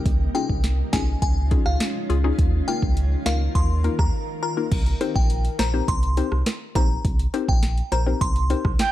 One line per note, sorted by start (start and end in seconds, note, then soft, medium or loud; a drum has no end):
0.00 4.68 D#4 medium
0.06 0.28 C#2 loud
0.06 2.36 G#3 medium
0.06 2.36 C#4 medium
0.06 4.68 F4 medium
0.06 kick loud
0.06 closed hi-hat medium
0.35 0.46 C#4 medium
0.35 0.46 D#4 medium
0.35 0.46 F4 medium
0.35 0.46 G#4 medium
0.35 0.47 G5 medium
0.35 closed hi-hat medium
0.49 0.83 C2 medium
0.49 kick medium
0.64 snare medium
0.64 closed hi-hat medium
0.93 1.15 C2 medium
0.93 1.05 C#4 medium
0.93 1.05 D#4 medium
0.93 1.05 F4 medium
0.93 1.05 G#4 medium
0.93 1.05 G#5 medium
0.93 kick loud
0.93 snare loud
0.93 closed hi-hat medium
1.22 1.55 C#2 loud
1.22 1.34 G#5 medium
1.22 kick medium
1.22 closed hi-hat medium
1.51 1.63 C#4 medium
1.51 1.63 D#4 medium
1.51 1.63 F4 medium
1.51 1.63 G#4 medium
1.51 kick loud
1.51 closed hi-hat medium
1.66 1.77 C#2 medium
1.66 1.78 F5 medium
1.66 cross-stick medium
1.80 snare loud
1.80 closed hi-hat medium
2.09 2.32 C#2 loud
2.09 2.15 F4 medium
2.09 2.15 G#4 loud
2.09 closed hi-hat medium
2.24 2.36 C#4 medium
2.24 2.36 D#4 medium
2.24 2.36 F4 medium
2.24 2.36 G#4 medium
2.38 2.61 D#2 loud
2.38 4.69 D#3 medium
2.38 4.69 A#4 medium
2.38 kick loud
2.38 closed hi-hat medium
2.68 2.80 A#3 medium
2.68 2.80 D#4 medium
2.68 2.80 F4 medium
2.68 2.80 A#4 medium
2.68 2.80 G5 medium
2.68 closed hi-hat medium
2.82 3.16 C#2 medium
2.82 kick medium
2.97 closed hi-hat medium
3.26 3.48 C#2 loud
3.26 3.38 A#3 medium
3.26 3.38 D#4 medium
3.26 3.38 F4 medium
3.26 3.38 A#4 medium
3.26 3.38 F5 medium
3.26 snare loud
3.26 closed hi-hat medium
3.55 3.88 D#2 loud
3.55 3.67 C6 medium
3.55 kick loud
3.55 closed hi-hat medium
3.84 3.96 A#3 medium
3.84 3.96 D#4 medium
3.84 3.96 F4 medium
3.84 3.96 A#4 medium
3.84 closed hi-hat medium
3.99 4.10 D#2 medium
3.99 4.11 A#5 medium
3.99 kick loud
3.99 cross-stick medium
4.42 4.48 F4 medium
4.42 4.48 A#4 medium
4.42 4.55 A#5 medium
4.57 4.69 A#3 medium
4.57 4.69 D#4 medium
4.57 4.69 F4 medium
4.57 4.69 A#4 medium
4.72 4.94 C2 loud
4.72 kick loud
4.72 closed hi-hat medium
4.72 crash loud
4.86 closed hi-hat medium
5.01 5.12 C4 medium
5.01 5.12 D#4 medium
5.01 5.12 G4 medium
5.01 5.12 A#4 medium
5.01 5.13 C5 medium
5.01 closed hi-hat medium
5.01 high bongo medium
5.15 5.49 A#1 medium
5.15 5.40 G5 medium
5.15 kick medium
5.30 closed hi-hat medium
5.45 closed hi-hat medium
5.59 5.81 A#1 medium
5.59 5.65 A#4 medium
5.59 5.65 C5 medium
5.59 5.84 A#5 medium
5.59 snare loud
5.59 closed hi-hat medium
5.59 low bongo medium
5.74 5.85 C4 medium
5.74 5.85 D#4 medium
5.74 5.85 G4 medium
5.74 5.85 A#4 medium
5.74 5.85 C5 medium
5.88 6.21 C2 loud
5.88 6.29 C6 loud
5.88 kick loud
5.88 closed hi-hat medium
6.03 closed hi-hat medium
6.17 6.29 C4 medium
6.17 6.29 D#4 medium
6.17 6.29 G4 medium
6.17 6.29 A#4 medium
6.17 6.29 C5 medium
6.17 closed hi-hat medium
6.17 high bongo medium
6.32 6.43 C2 medium
6.32 cross-stick medium
6.46 snare loud
6.46 closed hi-hat medium
6.46 high bongo medium
6.75 6.98 A#1 loud
6.75 6.87 C4 medium
6.75 6.87 D#4 medium
6.75 6.87 G4 medium
6.75 6.87 A#4 medium
6.75 6.87 C5 medium
6.75 6.88 A#5 medium
6.75 kick loud
6.75 closed hi-hat medium
6.75 high bongo medium
6.75 low bongo medium
7.05 7.27 C2 loud
7.05 kick loud
7.05 closed hi-hat medium
7.19 closed hi-hat medium
7.34 7.45 C4 medium
7.34 7.45 D#4 medium
7.34 7.45 G4 medium
7.34 7.45 A#4 medium
7.34 7.45 C5 medium
7.34 closed hi-hat medium
7.34 high bongo medium
7.48 7.82 A#1 medium
7.48 7.73 G5 medium
7.48 kick medium
7.63 snare medium
7.63 closed hi-hat medium
7.78 closed hi-hat medium
7.92 8.14 A#1 loud
7.92 7.98 A#4 medium
7.92 7.98 C5 medium
7.92 8.16 A#5 medium
7.92 closed hi-hat medium
7.92 low bongo medium
8.06 8.18 C4 medium
8.06 8.18 D#4 medium
8.06 8.18 G4 medium
8.06 8.18 A#4 medium
8.06 8.18 C5 medium
8.21 8.54 C2 loud
8.21 8.62 C6 loud
8.21 kick loud
8.21 closed hi-hat medium
8.36 closed hi-hat medium
8.50 8.62 C4 medium
8.50 8.62 D#4 medium
8.50 8.62 G4 medium
8.50 8.62 A#4 medium
8.50 8.62 C5 medium
8.50 closed hi-hat medium
8.50 high bongo medium
8.65 8.76 C2 loud
8.65 kick loud
8.65 cross-stick medium
8.79 8.92 G5 loud
8.79 snare loud
8.79 closed hi-hat medium
8.79 high bongo medium